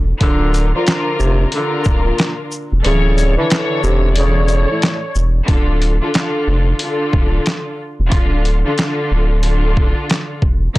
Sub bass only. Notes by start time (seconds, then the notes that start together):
Already playing: E1
0.21 D1
1.20 F1
1.86 D1
2.72 E1
2.85 D1
3.83 E1
5.15 E1
5.48 D1
6.47 F1
7.13 D1
7.99 E1
8.12 D1
9.11 D1
10.42 E1